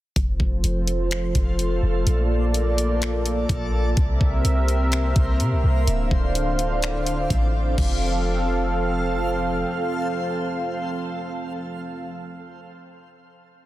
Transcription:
0.16 0.39 F1 loud
0.16 2.05 F3 medium
0.16 2.05 A3 medium
0.16 2.05 F4 medium
0.16 3.93 F4 medium
0.16 3.93 A4 medium
0.16 2.05 C5 medium
0.16 kick loud
0.16 closed hi-hat medium
0.40 0.63 F1 loud
0.40 kick medium
0.64 1.32 F1 loud
0.64 closed hi-hat medium
0.88 closed hi-hat medium
1.11 finger snap loud
1.11 closed hi-hat medium
1.35 1.81 F1 loud
1.35 kick loud
1.35 closed hi-hat medium
1.59 closed hi-hat medium
1.83 2.06 F1 loud
2.06 3.45 A#1 loud
2.06 3.95 A#3 medium
2.06 3.95 A4 medium
2.06 3.95 D5 medium
2.06 closed hi-hat medium
2.54 closed hi-hat medium
2.78 closed hi-hat medium
3.02 finger snap loud
3.02 closed hi-hat medium
3.26 closed hi-hat medium
3.49 3.95 A#1 loud
3.49 kick medium
3.49 closed hi-hat medium
3.97 4.20 C2 loud
3.97 5.86 C3 medium
3.97 5.86 A#3 medium
3.97 5.86 C4 medium
3.97 5.86 E4 medium
3.97 5.86 A#4 medium
3.97 5.86 C5 medium
3.97 5.86 E5 medium
3.97 kick loud
3.97 closed hi-hat medium
4.21 4.44 C2 loud
4.21 kick medium
4.44 5.13 C2 loud
4.44 closed hi-hat medium
4.68 closed hi-hat medium
4.92 finger snap loud
4.92 closed hi-hat medium
5.16 5.41 C2 loud
5.16 kick loud
5.16 closed hi-hat medium
5.40 5.53 C3 medium
5.40 closed hi-hat medium
5.52 5.63 C2 loud
5.64 5.87 C2 loud
5.87 6.10 D1 loud
5.87 7.76 D3 medium
5.87 7.76 C4 medium
5.87 7.76 D4 medium
5.87 7.76 F4 medium
5.87 7.76 C5 medium
5.87 7.76 D5 medium
5.87 7.76 F5 medium
5.87 closed hi-hat medium
6.11 7.26 D1 loud
6.11 kick medium
6.35 closed hi-hat medium
6.59 closed hi-hat medium
6.83 finger snap loud
6.83 closed hi-hat medium
7.07 closed hi-hat medium
7.30 7.76 A1 loud
7.30 kick medium
7.30 closed hi-hat medium
7.78 9.65 F1 loud
7.78 12.13 F3 medium
7.78 12.13 C4 medium
7.78 12.13 A4 medium
7.78 12.13 F5 medium
7.78 kick loud
7.78 crash medium

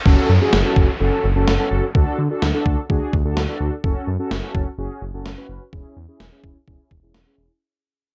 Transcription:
0.06 0.16 F#1 loud
0.06 0.31 C#4 medium
0.06 0.31 F#4 medium
0.06 0.31 A4 loud
0.06 kick loud
0.06 downlifter medium
0.30 0.39 F#2 loud
0.41 0.58 C#4 medium
0.41 0.58 F#4 medium
0.41 0.58 G#4 loud
0.53 0.63 F#1 loud
0.53 snare loud
0.65 0.91 C#4 medium
0.65 0.91 F#4 medium
0.65 0.91 A4 loud
0.77 0.86 F#1 loud
0.77 kick medium
1.00 1.10 F#1 loud
1.00 1.26 C#4 medium
1.00 1.26 F#4 medium
1.00 1.26 A4 loud
1.24 1.34 F#1 loud
1.36 1.46 F#1 loud
1.36 1.53 C#4 medium
1.36 1.53 F#4 medium
1.36 1.53 A4 loud
1.48 1.57 F#1 loud
1.48 snare loud
1.59 1.85 C#4 medium
1.59 1.85 F#4 medium
1.59 1.85 A4 loud
1.71 1.81 F#1 loud
1.95 2.05 D2 loud
1.95 2.21 D4 medium
1.95 2.21 F#4 medium
1.95 2.21 A4 loud
1.95 kick loud
2.19 2.28 D3 medium
2.30 2.48 D4 medium
2.30 2.47 F#4 medium
2.30 2.47 A4 loud
2.42 2.52 D2 loud
2.42 snare loud
2.54 2.80 D4 medium
2.54 2.80 F#4 medium
2.54 2.80 A4 loud
2.66 2.75 D2 loud
2.66 kick medium
2.89 2.99 D2 loud
2.89 3.15 D4 medium
2.89 3.15 F#4 medium
2.89 3.15 G#4 loud
2.89 kick medium
3.13 3.23 D2 loud
3.13 kick medium
3.25 3.34 D2 loud
3.25 3.42 D4 medium
3.25 3.42 F#4 medium
3.25 3.42 A4 loud
3.36 3.46 D2 loud
3.36 snare loud
3.48 3.74 D4 medium
3.48 3.74 F#4 medium
3.48 3.74 A4 medium
3.60 3.70 D2 loud
3.84 3.94 F#1 loud
3.84 4.09 C#4 medium
3.84 4.09 F#4 medium
3.84 4.10 A4 medium
3.84 kick loud
4.07 4.17 F#2 loud
4.19 4.36 C#4 medium
4.19 4.36 F#4 medium
4.19 4.36 A4 loud
4.31 4.41 F#1 loud
4.31 snare loud
4.43 4.69 C#4 medium
4.43 4.68 F#4 medium
4.43 4.68 A4 medium
4.55 4.64 F#1 loud
4.55 kick medium
4.78 4.88 F#1 medium
4.78 5.04 C#4 medium
4.78 5.04 F#4 medium
4.78 5.04 G#4 loud
5.02 5.11 F#1 medium
5.14 5.23 F#1 medium
5.14 5.31 C#4 medium
5.14 5.31 F#4 medium
5.14 5.31 A4 loud
5.25 5.35 F#1 loud
5.25 snare loud
5.37 5.63 C#4 medium
5.37 5.63 F#4 medium
5.37 5.63 B4 medium
5.49 5.59 F#1 medium
5.73 5.83 E1 medium
5.73 5.98 C#4 medium
5.73 5.98 E4 medium
5.73 5.98 G#4 loud
5.73 kick loud
5.96 6.06 E2 loud
6.08 6.25 C#4 medium
6.08 6.25 E4 medium
6.08 6.25 G#4 loud
6.20 6.30 E1 loud
6.20 snare medium
6.32 6.57 C#4 medium
6.32 6.57 E4 medium
6.32 6.57 G#4 loud
6.43 6.53 E1 medium
6.43 kick medium
6.67 6.77 E1 loud
6.67 6.93 C#4 medium
6.67 6.93 E4 medium
6.67 6.93 G#4 loud
6.67 kick medium
6.91 7.01 E1 medium
6.91 kick medium
7.03 7.12 E1 medium
7.03 7.20 C#4 medium
7.03 7.20 E4 medium
7.03 7.20 G#4 medium
7.14 7.24 E1 loud
7.14 snare loud
7.26 7.52 C#4 medium
7.26 7.52 E4 medium
7.26 7.52 G#4 medium
7.38 7.48 E1 loud

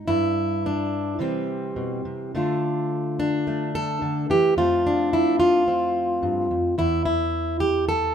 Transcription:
0.08 1.17 G2 medium
0.08 1.20 E4 loud
0.66 1.21 D4 medium
1.19 1.76 C3 medium
1.19 2.31 E3 soft
1.19 2.34 G3 soft
1.19 2.35 C4 medium
1.76 2.05 B2 medium
2.05 2.34 C3 medium
2.35 4.01 D3 medium
2.35 3.47 A3 soft
2.35 3.18 D4 soft
2.35 3.75 F4 soft
3.20 4.30 D4 medium
3.47 4.55 A3 soft
3.75 4.30 A4 loud
4.02 4.29 D3 medium
4.30 4.57 E3 medium
4.30 4.57 G4 medium
4.57 6.22 F2 medium
4.57 6.74 F3 medium
4.57 6.75 A3 soft
4.57 4.86 C4 soft
4.57 5.13 F4 medium
4.87 5.67 D4 medium
5.13 5.39 E4 medium
5.40 6.77 F4 medium
5.68 6.74 C4 soft
6.23 6.50 G2 medium
6.51 6.77 F2 medium
6.78 8.15 E2 medium
6.78 7.04 E4 loud
7.05 7.60 E4 medium
7.60 7.88 G4 loud
7.89 8.15 A4 loud

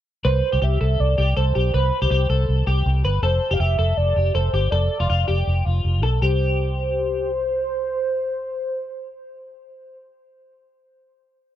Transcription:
0.25 0.40 C2 medium
0.25 0.51 B4 medium
0.25 0.65 C5 medium
0.52 0.61 C2 medium
0.52 0.61 G4 medium
0.62 0.77 C2 medium
0.62 0.80 G4 medium
0.62 1.01 E5 loud
0.81 0.96 C2 medium
0.81 1.16 A4 medium
1.00 1.15 C2 medium
1.00 1.39 D5 loud
1.18 1.33 C2 medium
1.18 1.36 G4 medium
1.37 1.52 C2 medium
1.37 1.55 A4 medium
1.37 1.74 C5 medium
1.55 1.71 B1 medium
1.55 1.74 G4 medium
1.74 1.89 C2 medium
1.74 2.00 B4 medium
1.74 2.83 C5 medium
2.02 2.10 C2 medium
2.02 2.10 G4 medium
2.11 2.26 C2 medium
2.11 2.29 G4 medium
2.30 2.45 C2 medium
2.30 2.65 A4 medium
2.49 2.64 C2 medium
2.67 2.82 C2 medium
2.67 3.02 G4 medium
2.86 3.01 C2 loud
3.04 3.20 G1 medium
3.04 3.23 B4 medium
3.22 3.38 F1 medium
3.22 3.49 A4 medium
3.22 3.55 C5 medium
3.51 3.59 F1 medium
3.51 3.59 G4 medium
3.51 3.62 F5 medium
3.60 3.75 F1 medium
3.60 3.78 G4 medium
3.60 3.99 E5 loud
3.79 3.94 F1 medium
3.79 4.16 A4 medium
3.97 4.13 F1 medium
3.97 4.36 D5 loud
4.16 4.32 F1 medium
4.16 4.35 G4 medium
4.34 4.50 F1 medium
4.34 4.53 A4 medium
4.34 4.70 C5 medium
4.53 4.69 G1 medium
4.53 4.72 G4 medium
4.71 4.87 F1 loud
4.71 4.99 A4 medium
4.71 5.80 D5 medium
5.00 5.08 F1 medium
5.00 5.08 F4 medium
5.10 5.25 F1 medium
5.10 5.27 F4 medium
5.28 5.44 F1 medium
5.28 5.65 G4 medium
5.47 5.62 F1 medium
5.65 5.81 F1 medium
5.65 6.01 F4 medium
5.85 6.03 F1 medium
6.03 6.18 B1 medium
6.03 6.22 A4 medium
6.22 10.08 C2 medium
6.22 7.30 G4 medium
6.22 9.98 C5 medium

